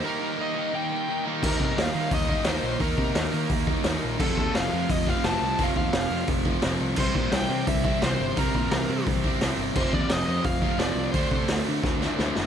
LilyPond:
<<
  \new Staff \with { instrumentName = "Lead electric guitar" } { \time 4/4 \key ees \lydian \tempo 4 = 173 bes'4 ees''4 g''4. r8 | bes'8 bes'8 f''4 ees''8 ees''8 c''4 | bes'8 bes'4. r2 | a'8 a'8 f''4 ees''8 f''8 a''4 |
f''8 f''4. r2 | c''8 c''8 g''4 e''8 e''8 c''4 | bes'8 bes'4. r2 | c''8 d''8 ees''4 f''4 d''4 |
c''4 r2. | }
  \new Staff \with { instrumentName = "Overdriven electric guitar" } { \time 4/4 \key ees \lydian <ees g bes ees' g'>8 <ees g bes ees' g'>8 <ees g bes ees' g'>8 <ees g bes ees' g'>8 <ees g bes ees' g'>8 <ees g bes ees' g'>8 <ees g bes ees' g'>8 <ees g bes ees' g'>8 | <ees g bes ees'>2~ <ees g bes ees'>8 <ees g bes ees'>8 <ees g bes ees'>4 | <ees g bes ees'>2~ <ees g bes ees'>8 <ees g bes ees'>8 <ees g bes ees'>4 | <f a c' f'>2~ <f a c' f'>8 <f a c' f'>8 <f a c' f'>4 |
<f a c' f'>2~ <f a c' f'>8 <f a c' f'>8 <f a c' f'>4 | <c e g c' e'>2~ <c e g c' e'>8 <c e g c' e'>8 <c e g c' e'>4 | <c e g c' e'>2~ <c e g c' e'>8 <c e g c' e'>8 <c e g c' e'>4 | <f a c' f'>2~ <f a c' f'>8 <f a c' f'>8 <f a c' f'>4 |
<d a c' fis'>2~ <d a c' fis'>8 <d a c' fis'>8 <d a c' fis'>4 | }
  \new Staff \with { instrumentName = "Distorted electric guitar" } { \clef bass \time 4/4 \key ees \lydian <ees bes ees'>8 <ees bes ees'>8 <ees bes ees'>8 <ees bes ees'>8 <ees bes ees'>8 <ees bes ees'>8 <ees bes ees'>8 <ees bes ees'>8 | <ees bes ees'>4. <ees bes ees'>2~ <ees bes ees'>8 | <ees bes ees'>4. <ees bes ees'>2~ <ees bes ees'>8 | <f, c f>4. <f, c f>2~ <f, c f>8 |
<f, c f>4. <f, c f>2~ <f, c f>8 | <c g c'>4. <c g c'>2~ <c g c'>8 | <c g c'>4. <c g c'>2~ <c g c'>8 | <f, c f>4. <f, c f>2~ <f, c f>8 |
<d a d'>4. <d a d'>2~ <d a d'>8 | }
  \new Staff \with { instrumentName = "Overdriven electric guitar" } { \clef bass \time 4/4 \key ees \lydian <ees bes ees'>2.~ <ees bes ees'>8 <ees bes ees'>8 | <ees bes ees'>2~ <ees bes ees'>8 <ees bes ees'>8 <ees bes ees'>4 | <ees bes ees'>2~ <ees bes ees'>8 <ees bes ees'>8 <ees bes ees'>4 | <f, c f>2~ <f, c f>8 <f, c f>8 <f, c f>4 |
<f, c f>2~ <f, c f>8 <f, c f>8 <f, c f>4 | <c g c'>2~ <c g c'>8 <c g c'>8 <c g c'>4 | <c g c'>2~ <c g c'>8 <c g c'>8 <c g c'>4 | <f, c f>2~ <f, c f>8 <f, c f>8 <f, c f>4 |
<d a d'>2~ <d a d'>8 <d a d'>8 <d a d'>4 | }
  \new Staff \with { instrumentName = "Picked electric bass" } { \clef bass \time 4/4 \key ees \lydian r1 | ees,8 c8 ees,8 ees8 ees,4 ees,8 bes,,8 | ees,8 c8 ees,8 ees8 ees,4 ees,8 bes,,8 | f,,8 ees,8 f,,8 f,8 f,,4 f,,8 c,8 |
f,,8 ees,8 f,,8 f,8 f,,4 f,,8 c,8 | c,8 bes,8 c,8 c8 c,4 c,8 g,,8 | c,8 bes,8 c,8 c8 c,4 c,8 g,,8 | f,,8 ees,8 f,,8 f,8 f,,4 f,,8 c,8 |
d,8 c8 d,8 d8 d,4 d,8 fis,,8 | }
  \new DrumStaff \with { instrumentName = "Drums" } \drummode { \time 4/4 r4 r4 r4 r4 | <cymc bd>8 bd8 <hho sn>4 <hho bd>8 bd8 <hho sn>4 | <hho bd>8 bd8 <hho sn>4 <hho bd>8 bd8 <hho sn>4 | <cymc bd>8 bd8 <hho sn>4 <hho bd>8 bd8 <hho sn>4 |
<hho bd>8 bd8 <hho sn>4 <hho bd>8 bd8 <hho sn>4 | <cymc bd>8 bd8 <hho sn>4 <hho bd>8 bd8 <hho sn>4 | <hho bd>8 bd8 <hho sn>4 <hho bd>8 bd8 <hho sn>4 | <cymc bd>8 bd8 <hho sn>4 <hho bd>8 bd8 <hho sn>4 |
<hho bd>8 bd8 <hho sn>4 <bd sn>8 sn8 sn8 sn8 | }
>>